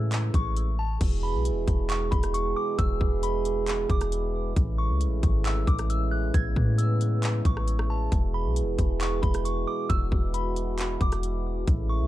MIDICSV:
0, 0, Header, 1, 5, 480
1, 0, Start_track
1, 0, Tempo, 444444
1, 1089, Time_signature, 4, 2, 24, 8
1, 13039, End_track
2, 0, Start_track
2, 0, Title_t, "Synth bell"
2, 0, Program_c, 0, 98
2, 0, Note_on_c, 0, 88, 75
2, 323, Note_off_c, 0, 88, 0
2, 379, Note_on_c, 0, 85, 85
2, 826, Note_off_c, 0, 85, 0
2, 853, Note_on_c, 0, 81, 82
2, 1079, Note_off_c, 0, 81, 0
2, 1331, Note_on_c, 0, 83, 77
2, 1558, Note_off_c, 0, 83, 0
2, 2050, Note_on_c, 0, 85, 90
2, 2277, Note_off_c, 0, 85, 0
2, 2280, Note_on_c, 0, 83, 79
2, 2512, Note_off_c, 0, 83, 0
2, 2526, Note_on_c, 0, 85, 80
2, 2755, Note_off_c, 0, 85, 0
2, 2770, Note_on_c, 0, 86, 96
2, 2997, Note_off_c, 0, 86, 0
2, 3007, Note_on_c, 0, 88, 105
2, 3459, Note_off_c, 0, 88, 0
2, 3490, Note_on_c, 0, 83, 85
2, 4166, Note_off_c, 0, 83, 0
2, 4219, Note_on_c, 0, 86, 89
2, 4891, Note_off_c, 0, 86, 0
2, 5166, Note_on_c, 0, 85, 78
2, 5395, Note_off_c, 0, 85, 0
2, 5892, Note_on_c, 0, 88, 82
2, 6118, Note_off_c, 0, 88, 0
2, 6128, Note_on_c, 0, 86, 83
2, 6356, Note_off_c, 0, 86, 0
2, 6372, Note_on_c, 0, 88, 77
2, 6598, Note_off_c, 0, 88, 0
2, 6603, Note_on_c, 0, 90, 87
2, 6834, Note_off_c, 0, 90, 0
2, 6849, Note_on_c, 0, 92, 100
2, 7300, Note_off_c, 0, 92, 0
2, 7324, Note_on_c, 0, 88, 75
2, 8003, Note_off_c, 0, 88, 0
2, 8060, Note_on_c, 0, 85, 86
2, 8506, Note_off_c, 0, 85, 0
2, 8533, Note_on_c, 0, 81, 84
2, 8759, Note_off_c, 0, 81, 0
2, 9010, Note_on_c, 0, 83, 75
2, 9237, Note_off_c, 0, 83, 0
2, 9730, Note_on_c, 0, 85, 87
2, 9957, Note_off_c, 0, 85, 0
2, 9960, Note_on_c, 0, 83, 79
2, 10192, Note_off_c, 0, 83, 0
2, 10206, Note_on_c, 0, 85, 77
2, 10435, Note_off_c, 0, 85, 0
2, 10448, Note_on_c, 0, 86, 101
2, 10677, Note_off_c, 0, 86, 0
2, 10686, Note_on_c, 0, 88, 107
2, 11138, Note_off_c, 0, 88, 0
2, 11168, Note_on_c, 0, 83, 88
2, 11845, Note_off_c, 0, 83, 0
2, 11899, Note_on_c, 0, 86, 88
2, 12571, Note_off_c, 0, 86, 0
2, 12846, Note_on_c, 0, 85, 79
2, 13039, Note_off_c, 0, 85, 0
2, 13039, End_track
3, 0, Start_track
3, 0, Title_t, "French horn section"
3, 0, Program_c, 1, 60
3, 0, Note_on_c, 1, 49, 83
3, 0, Note_on_c, 1, 52, 76
3, 0, Note_on_c, 1, 56, 74
3, 0, Note_on_c, 1, 57, 72
3, 0, Note_on_c, 1, 64, 91
3, 905, Note_off_c, 1, 49, 0
3, 905, Note_off_c, 1, 52, 0
3, 905, Note_off_c, 1, 56, 0
3, 905, Note_off_c, 1, 57, 0
3, 905, Note_off_c, 1, 64, 0
3, 1088, Note_on_c, 1, 47, 85
3, 1088, Note_on_c, 1, 52, 76
3, 1088, Note_on_c, 1, 56, 76
3, 1088, Note_on_c, 1, 64, 73
3, 1088, Note_on_c, 1, 68, 88
3, 4890, Note_off_c, 1, 47, 0
3, 4890, Note_off_c, 1, 56, 0
3, 4890, Note_off_c, 1, 68, 0
3, 4929, Note_on_c, 1, 56, 80
3, 4930, Note_on_c, 1, 49, 82
3, 4930, Note_on_c, 1, 57, 80
3, 6830, Note_off_c, 1, 57, 0
3, 6849, Note_on_c, 1, 59, 76
3, 8731, Note_off_c, 1, 49, 0
3, 8731, Note_off_c, 1, 56, 0
3, 8750, Note_off_c, 1, 59, 0
3, 8768, Note_on_c, 1, 47, 84
3, 8768, Note_on_c, 1, 56, 75
3, 8769, Note_on_c, 1, 68, 94
3, 10669, Note_off_c, 1, 68, 0
3, 10688, Note_on_c, 1, 66, 91
3, 12565, Note_off_c, 1, 52, 0
3, 12565, Note_off_c, 1, 64, 0
3, 12570, Note_off_c, 1, 47, 0
3, 12570, Note_off_c, 1, 56, 0
3, 12589, Note_off_c, 1, 66, 0
3, 12609, Note_on_c, 1, 49, 85
3, 12609, Note_on_c, 1, 52, 76
3, 12609, Note_on_c, 1, 56, 77
3, 12609, Note_on_c, 1, 57, 74
3, 12609, Note_on_c, 1, 64, 90
3, 13039, Note_off_c, 1, 49, 0
3, 13039, Note_off_c, 1, 52, 0
3, 13039, Note_off_c, 1, 56, 0
3, 13039, Note_off_c, 1, 57, 0
3, 13039, Note_off_c, 1, 64, 0
3, 13039, End_track
4, 0, Start_track
4, 0, Title_t, "808-style bass"
4, 0, Program_c, 2, 38
4, 0, Note_on_c, 2, 45, 104
4, 330, Note_off_c, 2, 45, 0
4, 367, Note_on_c, 2, 33, 98
4, 1059, Note_off_c, 2, 33, 0
4, 1089, Note_on_c, 2, 28, 108
4, 1448, Note_on_c, 2, 35, 103
4, 1464, Note_off_c, 2, 28, 0
4, 1629, Note_on_c, 2, 28, 103
4, 1645, Note_off_c, 2, 35, 0
4, 1800, Note_off_c, 2, 28, 0
4, 1810, Note_on_c, 2, 28, 102
4, 2270, Note_off_c, 2, 28, 0
4, 2288, Note_on_c, 2, 28, 102
4, 2749, Note_off_c, 2, 28, 0
4, 3009, Note_on_c, 2, 28, 111
4, 3239, Note_off_c, 2, 28, 0
4, 3248, Note_on_c, 2, 28, 103
4, 4170, Note_off_c, 2, 28, 0
4, 4207, Note_on_c, 2, 28, 99
4, 4899, Note_off_c, 2, 28, 0
4, 4930, Note_on_c, 2, 33, 110
4, 5289, Note_on_c, 2, 37, 107
4, 5305, Note_off_c, 2, 33, 0
4, 5469, Note_on_c, 2, 33, 100
4, 5485, Note_off_c, 2, 37, 0
4, 5640, Note_off_c, 2, 33, 0
4, 5649, Note_on_c, 2, 32, 102
4, 6110, Note_off_c, 2, 32, 0
4, 6128, Note_on_c, 2, 33, 101
4, 6819, Note_off_c, 2, 33, 0
4, 6850, Note_on_c, 2, 33, 112
4, 7080, Note_off_c, 2, 33, 0
4, 7088, Note_on_c, 2, 45, 108
4, 8010, Note_off_c, 2, 45, 0
4, 8047, Note_on_c, 2, 33, 104
4, 8739, Note_off_c, 2, 33, 0
4, 8769, Note_on_c, 2, 28, 106
4, 9128, Note_on_c, 2, 35, 109
4, 9144, Note_off_c, 2, 28, 0
4, 9308, Note_on_c, 2, 28, 104
4, 9324, Note_off_c, 2, 35, 0
4, 9479, Note_off_c, 2, 28, 0
4, 9489, Note_on_c, 2, 28, 101
4, 9950, Note_off_c, 2, 28, 0
4, 9967, Note_on_c, 2, 28, 102
4, 10428, Note_off_c, 2, 28, 0
4, 10689, Note_on_c, 2, 28, 113
4, 10919, Note_off_c, 2, 28, 0
4, 10928, Note_on_c, 2, 28, 107
4, 11850, Note_off_c, 2, 28, 0
4, 11887, Note_on_c, 2, 28, 102
4, 12579, Note_off_c, 2, 28, 0
4, 12609, Note_on_c, 2, 33, 106
4, 12968, Note_on_c, 2, 37, 103
4, 12984, Note_off_c, 2, 33, 0
4, 13039, Note_off_c, 2, 37, 0
4, 13039, End_track
5, 0, Start_track
5, 0, Title_t, "Drums"
5, 126, Note_on_c, 9, 42, 80
5, 133, Note_on_c, 9, 39, 111
5, 234, Note_off_c, 9, 42, 0
5, 241, Note_off_c, 9, 39, 0
5, 367, Note_on_c, 9, 36, 98
5, 368, Note_on_c, 9, 42, 67
5, 475, Note_off_c, 9, 36, 0
5, 476, Note_off_c, 9, 42, 0
5, 611, Note_on_c, 9, 42, 68
5, 719, Note_off_c, 9, 42, 0
5, 1089, Note_on_c, 9, 36, 109
5, 1089, Note_on_c, 9, 42, 79
5, 1089, Note_on_c, 9, 49, 95
5, 1197, Note_off_c, 9, 36, 0
5, 1197, Note_off_c, 9, 42, 0
5, 1197, Note_off_c, 9, 49, 0
5, 1568, Note_on_c, 9, 42, 82
5, 1676, Note_off_c, 9, 42, 0
5, 1809, Note_on_c, 9, 42, 65
5, 1810, Note_on_c, 9, 36, 91
5, 1917, Note_off_c, 9, 42, 0
5, 1918, Note_off_c, 9, 36, 0
5, 2047, Note_on_c, 9, 42, 83
5, 2054, Note_on_c, 9, 39, 124
5, 2155, Note_off_c, 9, 42, 0
5, 2162, Note_off_c, 9, 39, 0
5, 2287, Note_on_c, 9, 36, 101
5, 2289, Note_on_c, 9, 42, 41
5, 2395, Note_off_c, 9, 36, 0
5, 2397, Note_off_c, 9, 42, 0
5, 2409, Note_on_c, 9, 42, 72
5, 2415, Note_on_c, 9, 37, 92
5, 2517, Note_off_c, 9, 42, 0
5, 2523, Note_off_c, 9, 37, 0
5, 2531, Note_on_c, 9, 42, 75
5, 2639, Note_off_c, 9, 42, 0
5, 3009, Note_on_c, 9, 36, 110
5, 3009, Note_on_c, 9, 42, 80
5, 3117, Note_off_c, 9, 36, 0
5, 3117, Note_off_c, 9, 42, 0
5, 3248, Note_on_c, 9, 36, 90
5, 3356, Note_off_c, 9, 36, 0
5, 3488, Note_on_c, 9, 42, 85
5, 3596, Note_off_c, 9, 42, 0
5, 3728, Note_on_c, 9, 42, 68
5, 3836, Note_off_c, 9, 42, 0
5, 3965, Note_on_c, 9, 42, 85
5, 3973, Note_on_c, 9, 39, 115
5, 4073, Note_off_c, 9, 42, 0
5, 4081, Note_off_c, 9, 39, 0
5, 4207, Note_on_c, 9, 36, 103
5, 4208, Note_on_c, 9, 42, 42
5, 4315, Note_off_c, 9, 36, 0
5, 4316, Note_off_c, 9, 42, 0
5, 4329, Note_on_c, 9, 42, 76
5, 4335, Note_on_c, 9, 37, 90
5, 4437, Note_off_c, 9, 42, 0
5, 4443, Note_off_c, 9, 37, 0
5, 4451, Note_on_c, 9, 42, 75
5, 4559, Note_off_c, 9, 42, 0
5, 4930, Note_on_c, 9, 36, 107
5, 4930, Note_on_c, 9, 42, 79
5, 5038, Note_off_c, 9, 36, 0
5, 5038, Note_off_c, 9, 42, 0
5, 5408, Note_on_c, 9, 42, 80
5, 5516, Note_off_c, 9, 42, 0
5, 5649, Note_on_c, 9, 42, 68
5, 5650, Note_on_c, 9, 36, 98
5, 5757, Note_off_c, 9, 42, 0
5, 5758, Note_off_c, 9, 36, 0
5, 5886, Note_on_c, 9, 42, 84
5, 5893, Note_on_c, 9, 39, 124
5, 5994, Note_off_c, 9, 42, 0
5, 6001, Note_off_c, 9, 39, 0
5, 6128, Note_on_c, 9, 36, 99
5, 6129, Note_on_c, 9, 42, 43
5, 6236, Note_off_c, 9, 36, 0
5, 6237, Note_off_c, 9, 42, 0
5, 6249, Note_on_c, 9, 42, 73
5, 6255, Note_on_c, 9, 37, 91
5, 6357, Note_off_c, 9, 42, 0
5, 6363, Note_off_c, 9, 37, 0
5, 6371, Note_on_c, 9, 42, 71
5, 6479, Note_off_c, 9, 42, 0
5, 6849, Note_on_c, 9, 42, 79
5, 6850, Note_on_c, 9, 36, 107
5, 6957, Note_off_c, 9, 42, 0
5, 6958, Note_off_c, 9, 36, 0
5, 7089, Note_on_c, 9, 36, 87
5, 7197, Note_off_c, 9, 36, 0
5, 7328, Note_on_c, 9, 42, 81
5, 7436, Note_off_c, 9, 42, 0
5, 7570, Note_on_c, 9, 42, 68
5, 7678, Note_off_c, 9, 42, 0
5, 7806, Note_on_c, 9, 42, 80
5, 7813, Note_on_c, 9, 39, 113
5, 7914, Note_off_c, 9, 42, 0
5, 7921, Note_off_c, 9, 39, 0
5, 8047, Note_on_c, 9, 36, 103
5, 8048, Note_on_c, 9, 42, 68
5, 8155, Note_off_c, 9, 36, 0
5, 8156, Note_off_c, 9, 42, 0
5, 8175, Note_on_c, 9, 37, 90
5, 8283, Note_off_c, 9, 37, 0
5, 8290, Note_on_c, 9, 42, 71
5, 8398, Note_off_c, 9, 42, 0
5, 8415, Note_on_c, 9, 37, 105
5, 8523, Note_off_c, 9, 37, 0
5, 8769, Note_on_c, 9, 36, 109
5, 8769, Note_on_c, 9, 42, 76
5, 8877, Note_off_c, 9, 36, 0
5, 8877, Note_off_c, 9, 42, 0
5, 9248, Note_on_c, 9, 42, 82
5, 9356, Note_off_c, 9, 42, 0
5, 9488, Note_on_c, 9, 42, 67
5, 9489, Note_on_c, 9, 36, 91
5, 9596, Note_off_c, 9, 42, 0
5, 9597, Note_off_c, 9, 36, 0
5, 9725, Note_on_c, 9, 42, 85
5, 9733, Note_on_c, 9, 39, 119
5, 9833, Note_off_c, 9, 42, 0
5, 9841, Note_off_c, 9, 39, 0
5, 9967, Note_on_c, 9, 36, 98
5, 9968, Note_on_c, 9, 42, 41
5, 10075, Note_off_c, 9, 36, 0
5, 10076, Note_off_c, 9, 42, 0
5, 10088, Note_on_c, 9, 42, 74
5, 10094, Note_on_c, 9, 37, 92
5, 10196, Note_off_c, 9, 42, 0
5, 10202, Note_off_c, 9, 37, 0
5, 10210, Note_on_c, 9, 42, 74
5, 10318, Note_off_c, 9, 42, 0
5, 10689, Note_on_c, 9, 36, 104
5, 10689, Note_on_c, 9, 42, 78
5, 10797, Note_off_c, 9, 36, 0
5, 10797, Note_off_c, 9, 42, 0
5, 10928, Note_on_c, 9, 36, 90
5, 11036, Note_off_c, 9, 36, 0
5, 11168, Note_on_c, 9, 42, 79
5, 11276, Note_off_c, 9, 42, 0
5, 11409, Note_on_c, 9, 42, 66
5, 11517, Note_off_c, 9, 42, 0
5, 11646, Note_on_c, 9, 42, 82
5, 11653, Note_on_c, 9, 39, 121
5, 11754, Note_off_c, 9, 42, 0
5, 11761, Note_off_c, 9, 39, 0
5, 11887, Note_on_c, 9, 36, 98
5, 11888, Note_on_c, 9, 42, 44
5, 11995, Note_off_c, 9, 36, 0
5, 11996, Note_off_c, 9, 42, 0
5, 12009, Note_on_c, 9, 42, 71
5, 12015, Note_on_c, 9, 37, 88
5, 12117, Note_off_c, 9, 42, 0
5, 12123, Note_off_c, 9, 37, 0
5, 12131, Note_on_c, 9, 42, 72
5, 12239, Note_off_c, 9, 42, 0
5, 12609, Note_on_c, 9, 36, 111
5, 12609, Note_on_c, 9, 42, 75
5, 12717, Note_off_c, 9, 36, 0
5, 12717, Note_off_c, 9, 42, 0
5, 13039, End_track
0, 0, End_of_file